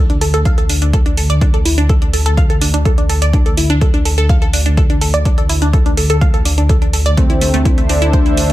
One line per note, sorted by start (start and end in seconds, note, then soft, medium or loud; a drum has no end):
0.00 7.15 D2 medium
0.10 0.17 D4 medium
0.10 closed hi-hat soft
0.21 0.29 A4 medium
0.21 open hi-hat medium
0.34 0.41 A4 loud
0.34 closed hi-hat medium
0.45 0.53 F5 loud
0.45 kick loud
0.45 closed hi-hat medium
0.58 0.65 A4 medium
0.58 closed hi-hat soft
0.69 0.77 D4 medium
0.69 open hi-hat loud
0.82 0.92 D4 medium
0.82 closed hi-hat medium
0.93 0.98 A4 medium
0.93 kick loud
0.93 closed hi-hat medium
1.06 1.13 D4 medium
1.06 closed hi-hat soft
1.17 1.25 A4 medium
1.17 open hi-hat medium
1.30 1.34 D5 loud
1.30 closed hi-hat medium
1.41 1.49 D4 medium
1.41 kick loud
1.41 closed hi-hat medium
1.54 1.61 A4 medium
1.54 closed hi-hat soft
1.65 1.77 E4 medium
1.65 open hi-hat loud
1.78 1.85 D4 loud
1.78 closed hi-hat medium
1.89 1.94 A4 medium
1.89 kick loud
1.89 closed hi-hat medium
2.02 2.09 D4 medium
2.02 closed hi-hat soft
2.13 2.21 A4 medium
2.13 open hi-hat medium
2.26 2.33 A4 loud
2.26 closed hi-hat medium
2.37 2.45 F5 loud
2.37 kick loud
2.37 closed hi-hat medium
2.50 2.57 A4 medium
2.50 closed hi-hat soft
2.61 2.69 D4 medium
2.61 open hi-hat loud
2.74 2.84 D4 medium
2.74 closed hi-hat medium
2.85 2.90 A4 medium
2.85 kick loud
2.85 closed hi-hat medium
2.98 3.05 D4 medium
2.98 closed hi-hat soft
3.09 3.17 A4 medium
3.09 open hi-hat medium
3.22 3.26 D5 loud
3.22 closed hi-hat medium
3.33 3.41 D4 medium
3.33 kick loud
3.33 closed hi-hat medium
3.46 3.53 A4 medium
3.46 closed hi-hat soft
3.57 3.69 E4 medium
3.57 open hi-hat loud
3.70 3.77 D4 loud
3.70 closed hi-hat medium
3.81 3.86 A4 medium
3.81 kick loud
3.81 closed hi-hat medium
3.94 4.01 D4 medium
3.94 closed hi-hat soft
4.05 4.13 A4 medium
4.05 open hi-hat loud
4.18 4.25 A4 loud
4.18 closed hi-hat medium
4.29 4.37 F5 loud
4.29 kick loud
4.29 closed hi-hat medium
4.42 4.49 A4 medium
4.42 closed hi-hat soft
4.53 4.61 D4 medium
4.53 open hi-hat loud
4.66 4.76 D4 medium
4.66 closed hi-hat medium
4.77 4.82 A4 medium
4.77 kick loud
4.77 closed hi-hat medium
4.90 4.97 D4 medium
4.90 closed hi-hat soft
5.01 5.09 A4 medium
5.01 open hi-hat medium
5.14 5.18 D5 loud
5.14 closed hi-hat medium
5.25 5.33 D4 medium
5.25 kick loud
5.25 closed hi-hat soft
5.38 5.45 A4 medium
5.38 closed hi-hat soft
5.49 5.61 E4 medium
5.49 open hi-hat loud
5.62 5.69 D4 loud
5.62 closed hi-hat medium
5.73 5.78 A4 medium
5.73 kick loud
5.73 closed hi-hat soft
5.86 5.93 D4 medium
5.86 closed hi-hat soft
5.97 6.05 A4 medium
5.97 open hi-hat medium
6.10 6.17 A4 loud
6.10 closed hi-hat medium
6.21 6.29 F5 loud
6.21 kick loud
6.21 closed hi-hat medium
6.34 6.41 A4 medium
6.34 closed hi-hat soft
6.45 6.53 D4 medium
6.45 open hi-hat loud
6.58 6.68 D4 medium
6.58 closed hi-hat medium
6.69 6.74 A4 medium
6.69 kick loud
6.69 closed hi-hat soft
6.82 6.89 D4 medium
6.82 closed hi-hat soft
6.93 7.01 A4 medium
6.93 open hi-hat medium
7.06 7.10 D5 loud
7.06 closed hi-hat medium
7.17 8.53 D2 medium
7.17 7.25 A3 medium
7.17 7.80 C4 loud
7.17 8.53 D4 medium
7.17 8.53 A4 medium
7.17 8.53 C5 medium
7.17 8.53 E5 medium
7.17 kick loud
7.17 closed hi-hat medium
7.30 7.37 E4 medium
7.30 closed hi-hat soft
7.41 7.53 A3 medium
7.41 open hi-hat loud
7.54 7.61 A3 loud
7.54 closed hi-hat medium
7.65 7.70 E4 medium
7.65 kick loud
7.65 closed hi-hat medium
7.78 7.85 A3 medium
7.78 closed hi-hat soft
7.89 7.94 C4 loud
7.89 8.52 D4 loud
7.89 open hi-hat medium
8.02 8.09 E4 loud
8.02 closed hi-hat medium
8.13 8.21 C5 loud
8.13 kick loud
8.13 closed hi-hat medium
8.26 8.33 E4 medium
8.26 closed hi-hat soft
8.37 8.45 A3 medium
8.37 open hi-hat loud